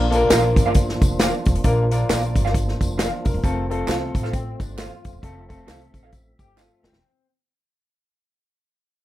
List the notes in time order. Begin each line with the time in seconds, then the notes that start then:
Already playing: A#1 F3 A#3 D4 F4
0.10 A#3 D4 F4 A4, closed hi-hat, tambourine
0.16 A#4
0.30 A#1 F4 A#4 D5 F5, snare, clap, closed hi-hat, tambourine
0.56 G1, kick, closed hi-hat, tambourine
0.66 F4 A#4 D5 F5
0.74 kick, closed hi-hat, tambourine
0.89 snare
1.02 F1, kick, closed hi-hat, tambourine
1.19 F4 A#4 D5 F5, snare, clap, closed hi-hat, tambourine
1.45 E1, kick, closed hi-hat, tambourine
1.55 A1, closed hi-hat
1.64 A#1 A#3 D4 F4 A#4, kick, closed hi-hat, tambourine
1.91 A#3 D4 F4 A#4, closed hi-hat, tambourine
2.09 A#1 F4 A#4 D5 F5, snare, clap, closed hi-hat, tambourine
2.23 closed hi-hat
2.35 G1, kick, closed hi-hat, tambourine
2.45 F4 A#4 D5 F5, snare
2.54 kick, closed hi-hat, tambourine
2.68 snare
2.81 F1, kick, closed hi-hat, tambourine
2.98 F4 A#4 D5 F5, snare, clap, closed hi-hat, tambourine
3.25 E1 A#4, kick, open hi-hat, tambourine
3.34 E1
3.43 F1 A3 C4 F4 A4, kick, closed hi-hat, tambourine
3.70 A3 C4 F4 A4, closed hi-hat
3.87 C2 F4 A4 C5 F5, snare, clap, closed hi-hat, tambourine
4.15 A1, kick, closed hi-hat, tambourine
4.23 F4 A4 C5 F5, snare
4.33 C4, kick, closed hi-hat, tambourine
4.60 G1 D4, kick, closed hi-hat, tambourine
4.78 F4 A4 C5 F5, snare, clap, closed hi-hat, tambourine
5.05 F1, kick, closed hi-hat, tambourine
5.13 E1
5.22 F1 A3 C4 F4 A4 E5, kick, closed hi-hat, tambourine
5.49 A3 C4 F4 A4, kick, closed hi-hat, tambourine
5.67 C2 F4 A4 C5 F5, snare, clap, closed hi-hat, tambourine
5.81 closed hi-hat
5.94 A1, kick, closed hi-hat, tambourine
6.03 F4 A4 C5 F5
6.12 kick, closed hi-hat, tambourine
6.39 G1 G4, kick, closed hi-hat, tambourine
6.56 F4 A4 C5 F5, snare, clap, tambourine
6.83 F1 C4 C5, snare, tambourine
6.92 E1, snare